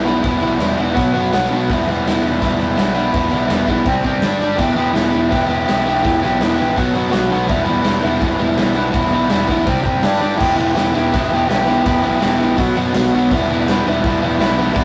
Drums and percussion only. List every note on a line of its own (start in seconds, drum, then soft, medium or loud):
0.23 kick loud
0.23 open hi-hat medium
0.60 snare loud
0.60 open hi-hat medium
0.96 kick loud
0.96 open hi-hat medium
1.33 snare loud
1.33 open hi-hat medium
1.70 kick loud
1.70 open hi-hat medium
2.07 snare loud
2.07 open hi-hat medium
2.42 kick loud
2.42 open hi-hat medium
2.77 snare loud
2.77 open hi-hat medium
3.14 kick loud
3.14 open hi-hat medium
3.50 snare loud
3.50 open hi-hat medium
3.68 kick medium
3.86 kick loud
3.86 open hi-hat medium
4.04 kick medium
4.22 snare loud
4.22 open hi-hat medium
4.58 kick loud
4.58 crash loud
4.95 snare loud
4.95 open hi-hat medium
5.32 kick loud
5.32 open hi-hat medium
5.68 snare loud
5.68 open hi-hat medium
6.04 kick loud
6.04 open hi-hat medium
6.41 snare loud
6.41 open hi-hat medium
6.77 kick loud
6.77 open hi-hat medium
7.13 snare loud
7.13 open hi-hat medium
7.49 kick loud
7.49 open hi-hat medium
7.85 snare loud
7.85 open hi-hat medium
8.22 kick loud
8.22 open hi-hat medium
8.57 snare loud
8.57 open hi-hat medium
8.93 kick loud
8.93 open hi-hat medium
9.30 snare loud
9.30 open hi-hat medium
9.49 kick medium
9.66 kick loud
9.66 open hi-hat medium
9.86 kick medium
10.03 snare loud
10.03 open hi-hat medium
10.40 kick loud
10.40 crash loud
10.77 snare loud
10.77 open hi-hat medium
11.14 kick loud
11.14 open hi-hat medium
11.50 snare loud
11.50 open hi-hat medium
11.86 kick loud
11.86 open hi-hat medium
12.22 snare loud
12.22 open hi-hat medium
12.58 kick loud
12.58 open hi-hat medium
12.94 snare loud
12.94 open hi-hat medium
13.31 kick loud
13.31 open hi-hat medium
13.68 snare loud
13.68 open hi-hat medium
14.04 kick loud
14.04 open hi-hat medium
14.40 snare loud
14.40 open hi-hat medium
14.76 kick loud
14.76 open hi-hat medium